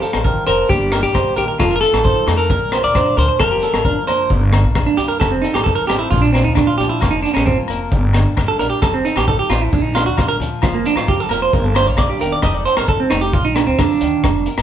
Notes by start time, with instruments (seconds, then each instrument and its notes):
Already playing: steel-string acoustic guitar F3 F4, clean electric guitar C5
0.02 clean electric guitar A4, steel-string acoustic guitar A#4, closed hi-hat
0.13 upright bass A1, cross-stick, low agogo
0.24 steel-string acoustic guitar D#3, clean electric guitar A#4, kick
0.47 upright bass F1, steel-string acoustic guitar F3, clean electric guitar A#4 C5, closed hi-hat, low agogo
0.69 upright bass G1, steel-string acoustic guitar G3 A#3 D4, clean electric guitar G4, muted steel-string acoustic guitar stroke, kick
0.92 steel-string acoustic guitar D4, clean electric guitar A#4, cross-stick, closed hi-hat, low agogo
1.03 upright bass A#1, clean electric guitar G4 D5
1.14 clean electric guitar C5, kick, cross-stick, low agogo
1.36 upright bass A#1, steel-string acoustic guitar D#3, clean electric guitar G4 A#4, closed hi-hat
1.48 clean electric guitar A#4
1.60 upright bass F1, steel-string acoustic guitar F3, clean electric guitar F4 A4, kick, cross-stick, low agogo
1.71 clean electric guitar A#4
1.76 clean electric guitar A#4
1.81 steel-string acoustic guitar F4, clean electric guitar A4, closed hi-hat
1.93 upright bass A1, clean electric guitar A4, cross-stick, low agogo
2.04 steel-string acoustic guitar D#4, clean electric guitar C5, kick
2.27 upright bass F2, steel-string acoustic guitar A3 F4, muted clean electric guitar stroke, cross-stick, closed hi-hat, low agogo
2.37 clean electric guitar A4 A#4
2.50 upright bass A#1, steel-string acoustic guitar A#2, clean electric guitar A#4, kick
2.72 steel-string acoustic guitar F4, clean electric guitar C5, cross-stick, closed hi-hat, low agogo
2.84 upright bass D2, clean electric guitar A#4 D5
2.95 steel-string acoustic guitar D4, clean electric guitar C5, kick, cross-stick, low agogo
3.17 upright bass D2, steel-string acoustic guitar F3, clean electric guitar A#4 C5, closed hi-hat
3.28 clean electric guitar C5
3.40 upright bass F1, steel-string acoustic guitar F3 A#3 F4, clean electric guitar A#4, kick, cross-stick, low agogo
3.51 clean electric guitar G4
3.62 steel-string acoustic guitar F4, clean electric guitar A4, closed hi-hat
3.73 upright bass A1, cross-stick, low agogo
3.85 steel-string acoustic guitar D4, clean electric guitar A#4, kick
3.99 muted steel-string acoustic guitar stroke
4.07 upright bass F#1, steel-string acoustic guitar A#3 A#4, clean electric guitar C5, closed hi-hat, low agogo
4.30 upright bass G1, steel-string acoustic guitar G2, kick
4.53 steel-string acoustic guitar D4, cross-stick, closed hi-hat, low agogo
4.64 upright bass A#1
4.75 kick, cross-stick, low agogo
4.86 clean electric guitar D4
4.97 upright bass C2, steel-string acoustic guitar G3 D4, clean electric guitar G4, closed hi-hat
5.08 clean electric guitar A#4
5.20 upright bass F1, steel-string acoustic guitar F3, clean electric guitar A4, kick, cross-stick, low agogo
5.31 clean electric guitar C4
5.42 clean electric guitar D#4, steel-string acoustic guitar A4, closed hi-hat
5.54 upright bass A1, clean electric guitar G4, cross-stick, low agogo
5.64 steel-string acoustic guitar D#4, clean electric guitar A4, kick
5.75 clean electric guitar A#4
5.87 upright bass A1, steel-string acoustic guitar C4 D#4, clean electric guitar G4, cross-stick, closed hi-hat, low agogo
5.99 clean electric guitar E4
6.11 upright bass A#1, steel-string acoustic guitar A#2 F3 D4, clean electric guitar F4, kick
6.22 clean electric guitar D4
6.32 clean electric guitar C4, steel-string acoustic guitar F4, cross-stick, closed hi-hat, low agogo
6.44 upright bass D2, clean electric guitar D#4
6.55 clean electric guitar D4, steel-string acoustic guitar D4, kick, cross-stick, low agogo
6.67 clean electric guitar F4
6.78 upright bass C2, steel-string acoustic guitar F3 F4, clean electric guitar G4, closed hi-hat
6.89 clean electric guitar E4
7.00 upright bass F1, steel-string acoustic guitar F3 A#3, clean electric guitar F4, kick, cross-stick, low agogo
7.11 clean electric guitar D#4
7.22 clean electric guitar D4, closed hi-hat
7.34 upright bass A1, clean electric guitar C#4, steel-string acoustic guitar A#4, cross-stick, low agogo
7.46 clean electric guitar C4, steel-string acoustic guitar F4, kick
7.68 upright bass F1, steel-string acoustic guitar A#3 A#4, closed hi-hat, low agogo
7.91 upright bass G1, steel-string acoustic guitar G2, kick
8.13 steel-string acoustic guitar D4, cross-stick, closed hi-hat, low agogo
8.25 upright bass A#1
8.37 steel-string acoustic guitar A#3, kick, cross-stick, low agogo
8.48 clean electric guitar A4
8.59 upright bass A#1, steel-string acoustic guitar G3 D4, clean electric guitar A#4, closed hi-hat
8.70 clean electric guitar G4
8.82 upright bass F1, steel-string acoustic guitar F3, clean electric guitar A4, kick, cross-stick, low agogo
8.94 clean electric guitar C4
9.04 clean electric guitar D#4, steel-string acoustic guitar A4, closed hi-hat
9.16 upright bass A1, clean electric guitar G4, cross-stick, low agogo
9.27 steel-string acoustic guitar D#4, clean electric guitar A4, kick
9.39 clean electric guitar G4
9.49 upright bass A1, steel-string acoustic guitar C4 D#4, clean electric guitar F4, cross-stick, closed hi-hat, low agogo
9.61 clean electric guitar E4
9.72 upright bass A#1, steel-string acoustic guitar A#2, clean electric guitar D4, kick
9.83 clean electric guitar D#4
9.95 steel-string acoustic guitar D4, clean electric guitar F4, cross-stick, closed hi-hat, low agogo
10.06 upright bass D2, clean electric guitar F#4
10.17 clean electric guitar F4, kick, cross-stick, low agogo
10.28 clean electric guitar A#4
10.40 upright bass D2, steel-string acoustic guitar F3 F4, closed hi-hat
10.62 upright bass F1, steel-string acoustic guitar F3, clean electric guitar F4, kick, cross-stick, low agogo
10.74 clean electric guitar A#3
10.86 clean electric guitar D4, steel-string acoustic guitar A#4, closed hi-hat
10.96 upright bass A1, clean electric guitar F4, cross-stick, low agogo
11.07 steel-string acoustic guitar F4, clean electric guitar G4, kick
11.20 clean electric guitar A4
11.29 upright bass F1, steel-string acoustic guitar A#3 F4, clean electric guitar A#4, closed hi-hat, low agogo
11.42 clean electric guitar C5
11.53 upright bass G1, steel-string acoustic guitar G2, clean electric guitar A#4, kick
11.65 clean electric guitar A4
11.75 steel-string acoustic guitar D4, clean electric guitar C5, cross-stick, closed hi-hat, low agogo
11.87 upright bass A#1, clean electric guitar C#5
11.97 steel-string acoustic guitar D3, clean electric guitar D5, kick, cross-stick, low agogo
12.10 clean electric guitar G4
12.19 upright bass E1, steel-string acoustic guitar D#3, clean electric guitar A#4, closed hi-hat
12.32 clean electric guitar D5
12.42 upright bass F1, steel-string acoustic guitar C4 D#4 A4, clean electric guitar D#5, muted steel-string acoustic guitar stroke, kick, cross-stick, low agogo
12.54 clean electric guitar D5
12.66 steel-string acoustic guitar A4, clean electric guitar C5, closed hi-hat
12.77 upright bass A1, clean electric guitar A#4, cross-stick, low agogo
12.88 clean electric guitar A4, kick
13.00 clean electric guitar C4
13.10 upright bass F1, steel-string acoustic guitar A3, clean electric guitar D#4, cross-stick, closed hi-hat, low agogo
13.21 clean electric guitar G4
13.33 upright bass A#1, steel-string acoustic guitar A#2, clean electric guitar F4, kick
13.45 clean electric guitar D#4
13.55 clean electric guitar D4, steel-string acoustic guitar F4, cross-stick, closed hi-hat, low agogo
13.67 upright bass D2, clean electric guitar C4
13.78 steel-string acoustic guitar D3, clean electric guitar D4, kick, cross-stick, low agogo
14.01 upright bass D2, steel-string acoustic guitar D#3, closed hi-hat
14.23 upright bass F1, muted steel-string acoustic guitar stroke, kick, cross-stick, low agogo
14.46 steel-string acoustic guitar A#4, closed hi-hat
14.58 upright bass A1, cross-stick, low agogo